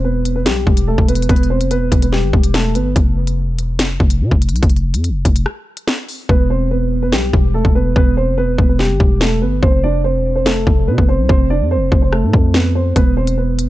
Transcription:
Already playing: E1
0.04 B3 B4
0.25 closed hi-hat
0.36 B3 B4
0.46 B1 G3 G4, snare, closed hi-hat
0.67 E1, kick
0.77 closed hi-hat
0.88 A3 A4
0.98 E1, kick
1.08 B3 B4, closed hi-hat
1.15 closed hi-hat
1.22 closed hi-hat
1.29 E1 B3 B4, kick, closed hi-hat
1.36 closed hi-hat
1.43 closed hi-hat
1.50 C4 C5
1.60 F1, closed hi-hat
1.71 B3 B4, closed hi-hat
1.76 E1
1.92 E1, kick, closed hi-hat
2.02 B3 B4, closed hi-hat
2.13 G3 G4, snare
2.23 G1
2.33 E1, kick
2.44 closed hi-hat
2.54 A3 A4, snare
2.75 G1 B3 B4, closed hi-hat
2.96 F1, kick, closed hi-hat
3.27 closed hi-hat
3.48 E1
3.59 closed hi-hat
3.74 F1
3.79 snare, closed hi-hat
4.00 F1, kick
4.10 closed hi-hat
4.21 C3
4.31 F1, kick
4.42 closed hi-hat
4.49 C2, closed hi-hat
4.56 closed hi-hat
4.63 F1, kick, closed hi-hat
4.70 closed hi-hat
4.76 closed hi-hat
4.94 F2, closed hi-hat
5.04 closed hi-hat
5.09 F1
5.25 F1, kick, closed hi-hat
5.36 closed hi-hat
5.46 cross-stick
5.77 closed hi-hat
5.88 snare
6.09 open hi-hat
6.29 E1 B3 B4, kick
6.50 C4 C5
6.71 B3 B4
7.02 B3 B4
7.12 B1 G3 G4, snare
7.33 E1, kick
7.54 A3 A4
7.65 E1, kick
7.75 B3 B4
7.96 E1 B3 B4, kick
8.17 C4 C5
8.27 F1
8.38 B3 B4
8.43 E1
8.58 E1, kick
8.69 B3 B4
8.79 G3 G4, snare
8.90 G1
9.00 E1, kick
9.21 A3 A4, snare
9.42 G1 B3 B4
9.62 F1 C4 C5, kick
9.84 D4 D5
10.04 C4 C5
10.15 E1
10.36 C4 C5
10.41 F1
10.46 A3 A4, snare
10.67 F1, kick
10.88 C3 B3 B4
10.98 F1, kick
11.09 C4 C5
11.19 C2
11.29 F1 C4 C5, kick
11.50 D4 D5
11.61 F2
11.71 C4 C5
11.76 F1
11.92 F1, kick
12.02 C4 C5
12.13 A3 A4, cross-stick
12.23 A2
12.33 F2, kick
12.54 B3 B4, snare
12.75 C4 C5
12.96 E1 B3 B4, kick, closed hi-hat
13.17 C4 C5
13.27 closed hi-hat
13.38 B3 B4
13.59 closed hi-hat

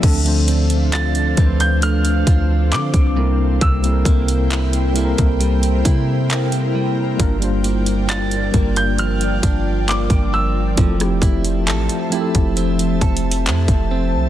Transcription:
Already playing: E3 A3 C4
0.01 D2 D3 F3 A3 C4 D4 A4 C5 F5, kick, closed hi-hat, crash
0.06 A4
0.23 F3 A3 C4 D4, closed hi-hat
0.28 C5
0.48 C4, closed hi-hat
0.70 closed hi-hat
0.92 F4 A6, clap, closed hi-hat
1.15 closed hi-hat
1.35 D2 F3 A3 C4 D4, kick, closed hi-hat
1.40 B4
1.46 C5
1.60 G6, closed hi-hat
1.82 A3 F6, closed hi-hat
2.05 closed hi-hat
2.27 D2 F4, kick, closed hi-hat
2.72 D3 C4 D6, clap, closed hi-hat
2.94 C2, kick, closed hi-hat
3.14 C3 G3 A#3 C4 E4 A#4 C5 G5
3.19 A#4
3.61 C2 C3 E6, kick, closed hi-hat
3.81 G3 A#3 C4 E4, closed hi-hat
3.86 A4
3.93 A#4
4.05 C2 A#3, kick, closed hi-hat
4.28 closed hi-hat
4.51 E4, clap, closed hi-hat
4.73 closed hi-hat
4.93 G3 A#3 C4 E4, closed hi-hat
4.98 A4
5.05 A#4
5.18 C2, kick, closed hi-hat
5.40 G3, closed hi-hat
5.63 closed hi-hat
5.85 C3 E4, kick, closed hi-hat
6.30 A#3, clap, closed hi-hat
6.52 closed hi-hat
6.75 G3
7.17 G1 G2 G3 A#3 D4 F4 D5 G5, kick, closed hi-hat
7.22 A#4
7.40 G3 A#3 D4 F4, closed hi-hat
7.44 C5
7.64 A#3, closed hi-hat
7.86 closed hi-hat
8.09 D4 A6, clap, closed hi-hat
8.31 closed hi-hat
8.52 G1 G3 A#3 D4 F4, kick, closed hi-hat
8.56 A#4
8.76 G6, closed hi-hat
8.98 F3 F6, closed hi-hat
9.21 closed hi-hat
9.43 G1 D4, kick, closed hi-hat
9.88 A#3 D6, clap, closed hi-hat
10.10 G1, kick, closed hi-hat
10.33 F3 E6
10.75 F1 F3 A3 C4 E4 C5 E5 A5, kick, closed hi-hat
10.80 A4
10.98 F3 A3 C4 E4, cross-stick, closed hi-hat
11.02 G4
11.22 F1 E4, kick, closed hi-hat
11.45 closed hi-hat
11.67 A1 A4, clap, closed hi-hat
11.89 closed hi-hat
12.10 F3 A3 C4 E4, closed hi-hat
12.14 G4
12.21 A4
12.35 F1, kick, closed hi-hat
12.57 C4, closed hi-hat
12.79 closed hi-hat
13.01 F1 A4, kick, closed hi-hat
13.17 closed hi-hat
13.31 closed hi-hat
13.46 F2 E4, clap, closed hi-hat
13.68 F1, kick, closed hi-hat
13.91 C4
14.14 C2

